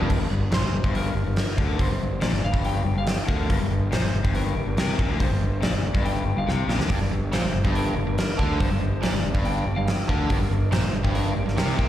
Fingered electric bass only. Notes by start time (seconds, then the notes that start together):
0.01 G1
0.10 G1
0.20 G1
0.31 G1
0.52 A#1
0.62 G1
0.72 G1
0.84 G1
1.15 G1
1.26 G1
1.58 D2
1.79 G1
1.91 G1
2.01 G1
2.23 A#1
2.33 G1
2.44 G1
2.53 G1
2.86 G1
2.96 G1
3.29 D2
3.50 G1
3.61 G1
3.71 G1
3.93 A#1
4.03 G1
4.14 G1
4.24 G1
4.56 G1
4.67 G1
4.77 C2
4.99 A#1
5.09 D2
5.21 G1
5.31 G1
5.42 G1
5.63 A#1
5.73 G1
5.83 G1
5.95 G1
6.26 G1
6.36 G1
6.47 C2
6.68 A#1
6.79 D2
6.90 G1
7.00 G1
7.12 G1
7.33 A#1
7.43 G1
7.54 G1
7.65 G1
7.97 G1
8.07 G1
8.39 D2
8.60 G1
8.71 G1
8.82 G1
9.03 A#1
9.14 G1
9.25 G1
9.35 G1
9.67 G1
9.77 G1
10.09 D2
10.30 G1
10.41 G1
10.51 G1
10.72 A#1
10.83 G1
10.94 G1
11.04 G1
11.37 G1
11.47 G1
11.57 C2
11.79 A#1